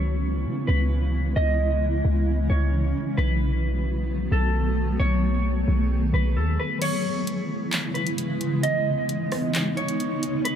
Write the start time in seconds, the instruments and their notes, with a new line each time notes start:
Already playing: 808-style bass C#2, ambient pad C#3 E3 G#3 B3 E4, clean electric guitar C#5
0.45 808-style bass C#3
0.67 808-style bass C#2, clean electric guitar B4
1.36 808-style bass C#2, ambient pad C#4, clean electric guitar D#5
2.05 808-style bass C#2
2.50 808-style bass C#2, clean electric guitar C#5
3.17 808-style bass B1, ambient pad D#3 F#3 A3 B3 F#4, clean electric guitar B4
4.32 808-style bass B1, clean electric guitar A4
5.00 808-style bass B1, ambient pad G#4, clean electric guitar C#5
5.68 808-style bass B1
6.13 808-style bass B1, clean electric guitar B4
6.36 808-style bass D#2, clean electric guitar A4
6.59 clean electric guitar B4
6.81 ambient pad C#3 E3 G#3 B3 E4, clean electric guitar C#5, closed hi-hat, crash
7.27 closed hi-hat
7.73 clap, closed hi-hat
7.94 clean electric guitar B4, closed hi-hat
8.07 closed hi-hat
8.18 closed hi-hat
8.41 closed hi-hat
8.63 ambient pad D#4, clean electric guitar D#5, closed hi-hat
9.09 closed hi-hat
9.32 cross-stick, open hi-hat
9.55 clap, closed hi-hat
9.77 clean electric guitar C#5, closed hi-hat
9.88 closed hi-hat
10.00 closed hi-hat
10.23 closed hi-hat
10.45 ambient pad D#3 F#3 A3 F#4, clean electric guitar B4, closed hi-hat